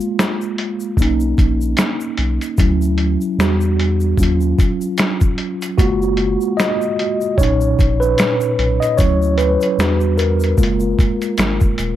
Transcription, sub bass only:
0.97 1.34 B1 loud
1.38 1.75 A#1 medium
2.18 2.39 B1 loud
2.58 3.17 D2 medium
3.38 4.14 E2 loud
4.18 4.54 D#2 loud
5.78 6.37 F#1 medium
7.38 7.75 B1 loud
7.79 8.15 A#1 medium
8.59 8.79 B1 medium
8.99 9.57 D2 loud
9.78 10.54 E2 loud
10.58 10.94 F#1 loud
11.38 11.59 G#1 medium
11.78 11.96 D#1 medium

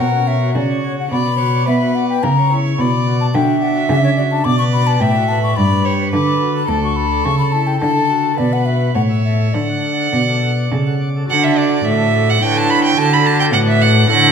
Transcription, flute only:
0.00 0.29 F#5 medium
0.27 0.57 E5 medium
0.56 0.86 D5 medium
0.84 0.98 C#5 medium
0.99 1.11 F#5 medium
1.12 1.66 B5 medium
1.67 1.97 E5 medium
1.95 2.09 F#5 medium
2.09 2.25 G5 medium
2.23 2.53 A#5 medium
2.78 3.19 B5 medium
3.20 3.26 A5 medium
3.34 3.63 G5 medium
3.62 3.89 F#5 medium
3.90 4.03 E5 medium
4.04 4.10 C#5 medium
4.17 4.23 D5 medium
4.31 4.46 A5 medium
4.45 4.58 D6 medium
4.59 4.65 C#6 medium
4.73 4.88 B5 medium
4.87 5.01 A5 medium
5.00 5.30 G5 medium
5.28 5.42 A5 medium
5.43 5.58 C#6 medium
5.57 5.93 B5 medium
6.13 6.52 D6 medium
6.55 6.70 B5 medium
6.69 6.83 A5 medium
6.84 6.98 C#6 medium
6.96 7.26 B5 medium
7.25 7.38 C#6 medium
7.39 7.54 B5 medium
7.52 7.68 A5 medium
7.67 7.80 G5 medium
7.81 8.39 A5 medium
8.38 8.54 D5 medium
8.53 8.67 F#5 medium
8.66 8.94 E5 medium
8.95 9.01 F#5 medium
9.24 9.55 E5 medium
9.53 11.00 D5 medium
11.86 12.39 A4 medium
12.44 12.98 B4 medium
12.99 13.56 A4 medium
13.54 14.11 B4 medium
14.10 14.32 A4 medium

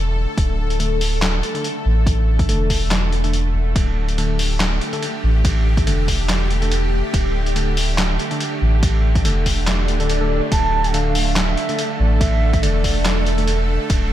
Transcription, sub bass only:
0.00 0.27 E1 loud
0.38 1.42 D1 loud
1.85 2.50 A1 medium
2.49 3.54 E1 loud
3.54 3.74 E1 medium
3.76 4.80 D1 loud
5.23 5.88 A1 medium
5.87 7.03 E1 loud
7.14 8.18 D1 loud
8.62 9.27 A1 medium
9.25 9.90 E1 loud
9.88 10.41 D1 loud
10.52 11.56 D1 loud
12.00 12.65 A1 medium
12.63 13.79 E1 loud
13.90 14.13 D1 loud

